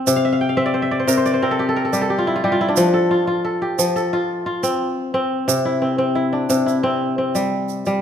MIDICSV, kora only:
0, 0, Header, 1, 2, 480
1, 0, Start_track
1, 0, Tempo, 676437
1, 48, Time_signature, 4, 2, 24, 8
1, 5688, End_track
2, 0, Start_track
2, 0, Title_t, "Kora"
2, 0, Program_c, 0, 46
2, 0, Note_on_c, 0, 53, 77
2, 0, Note_on_c, 0, 60, 77
2, 0, Note_on_c, 0, 65, 59
2, 49, Note_on_c, 0, 48, 90
2, 84, Note_off_c, 0, 53, 0
2, 115, Note_on_c, 0, 77, 70
2, 177, Note_on_c, 0, 76, 70
2, 219, Note_off_c, 0, 65, 0
2, 228, Note_off_c, 0, 77, 0
2, 231, Note_on_c, 0, 77, 73
2, 291, Note_on_c, 0, 79, 72
2, 346, Note_off_c, 0, 77, 0
2, 348, Note_on_c, 0, 77, 68
2, 391, Note_off_c, 0, 76, 0
2, 401, Note_off_c, 0, 60, 0
2, 404, Note_on_c, 0, 60, 75
2, 404, Note_on_c, 0, 76, 71
2, 466, Note_on_c, 0, 74, 73
2, 525, Note_on_c, 0, 72, 69
2, 581, Note_off_c, 0, 76, 0
2, 583, Note_on_c, 0, 76, 69
2, 626, Note_off_c, 0, 77, 0
2, 646, Note_off_c, 0, 74, 0
2, 649, Note_on_c, 0, 74, 69
2, 704, Note_off_c, 0, 72, 0
2, 706, Note_on_c, 0, 72, 69
2, 755, Note_off_c, 0, 48, 0
2, 762, Note_on_c, 0, 48, 80
2, 764, Note_on_c, 0, 70, 72
2, 830, Note_off_c, 0, 72, 0
2, 832, Note_on_c, 0, 72, 70
2, 889, Note_off_c, 0, 74, 0
2, 892, Note_on_c, 0, 74, 71
2, 946, Note_off_c, 0, 72, 0
2, 949, Note_on_c, 0, 72, 68
2, 952, Note_off_c, 0, 79, 0
2, 1007, Note_off_c, 0, 60, 0
2, 1009, Note_off_c, 0, 70, 0
2, 1010, Note_on_c, 0, 60, 83
2, 1012, Note_on_c, 0, 70, 73
2, 1072, Note_on_c, 0, 69, 75
2, 1130, Note_on_c, 0, 67, 70
2, 1195, Note_off_c, 0, 69, 0
2, 1197, Note_on_c, 0, 69, 71
2, 1240, Note_off_c, 0, 70, 0
2, 1251, Note_on_c, 0, 70, 68
2, 1309, Note_off_c, 0, 69, 0
2, 1311, Note_on_c, 0, 69, 69
2, 1317, Note_off_c, 0, 76, 0
2, 1367, Note_off_c, 0, 67, 0
2, 1368, Note_on_c, 0, 55, 76
2, 1370, Note_on_c, 0, 67, 70
2, 1427, Note_off_c, 0, 69, 0
2, 1430, Note_on_c, 0, 69, 70
2, 1472, Note_off_c, 0, 70, 0
2, 1487, Note_off_c, 0, 67, 0
2, 1490, Note_on_c, 0, 67, 66
2, 1550, Note_on_c, 0, 65, 72
2, 1612, Note_on_c, 0, 64, 71
2, 1670, Note_off_c, 0, 65, 0
2, 1673, Note_on_c, 0, 65, 73
2, 1678, Note_off_c, 0, 74, 0
2, 1723, Note_off_c, 0, 55, 0
2, 1727, Note_off_c, 0, 67, 0
2, 1730, Note_on_c, 0, 67, 71
2, 1731, Note_on_c, 0, 55, 77
2, 1785, Note_off_c, 0, 65, 0
2, 1788, Note_on_c, 0, 65, 74
2, 1791, Note_off_c, 0, 72, 0
2, 1830, Note_off_c, 0, 64, 0
2, 1851, Note_on_c, 0, 64, 77
2, 1905, Note_on_c, 0, 62, 75
2, 1966, Note_on_c, 0, 53, 87
2, 2003, Note_off_c, 0, 48, 0
2, 2003, Note_off_c, 0, 55, 0
2, 2008, Note_off_c, 0, 64, 0
2, 2081, Note_off_c, 0, 69, 0
2, 2084, Note_on_c, 0, 69, 63
2, 2203, Note_off_c, 0, 65, 0
2, 2205, Note_on_c, 0, 65, 67
2, 2287, Note_off_c, 0, 60, 0
2, 2320, Note_off_c, 0, 65, 0
2, 2323, Note_on_c, 0, 65, 78
2, 2442, Note_off_c, 0, 69, 0
2, 2445, Note_on_c, 0, 69, 69
2, 2564, Note_off_c, 0, 67, 0
2, 2567, Note_on_c, 0, 67, 62
2, 2679, Note_off_c, 0, 53, 0
2, 2687, Note_on_c, 0, 53, 80
2, 2806, Note_off_c, 0, 69, 0
2, 2809, Note_on_c, 0, 69, 64
2, 2928, Note_off_c, 0, 65, 0
2, 2931, Note_on_c, 0, 65, 84
2, 3097, Note_off_c, 0, 62, 0
2, 3163, Note_off_c, 0, 65, 0
2, 3166, Note_on_c, 0, 65, 64
2, 3287, Note_on_c, 0, 60, 74
2, 3570, Note_off_c, 0, 67, 0
2, 3644, Note_off_c, 0, 60, 0
2, 3647, Note_on_c, 0, 60, 77
2, 3744, Note_off_c, 0, 69, 0
2, 3887, Note_on_c, 0, 48, 82
2, 3923, Note_off_c, 0, 53, 0
2, 4012, Note_on_c, 0, 64, 67
2, 4054, Note_off_c, 0, 65, 0
2, 4125, Note_off_c, 0, 60, 0
2, 4128, Note_on_c, 0, 60, 62
2, 4243, Note_off_c, 0, 60, 0
2, 4246, Note_on_c, 0, 60, 73
2, 4363, Note_off_c, 0, 64, 0
2, 4366, Note_on_c, 0, 64, 67
2, 4489, Note_on_c, 0, 62, 59
2, 4601, Note_off_c, 0, 48, 0
2, 4610, Note_on_c, 0, 48, 77
2, 4726, Note_off_c, 0, 64, 0
2, 4728, Note_on_c, 0, 64, 62
2, 4846, Note_off_c, 0, 60, 0
2, 4849, Note_on_c, 0, 60, 82
2, 5093, Note_off_c, 0, 60, 0
2, 5096, Note_on_c, 0, 60, 58
2, 5215, Note_on_c, 0, 55, 72
2, 5573, Note_off_c, 0, 55, 0
2, 5582, Note_on_c, 0, 55, 77
2, 5681, Note_off_c, 0, 62, 0
2, 5688, Note_off_c, 0, 48, 0
2, 5688, Note_off_c, 0, 55, 0
2, 5688, Note_off_c, 0, 60, 0
2, 5688, Note_off_c, 0, 64, 0
2, 5688, End_track
0, 0, End_of_file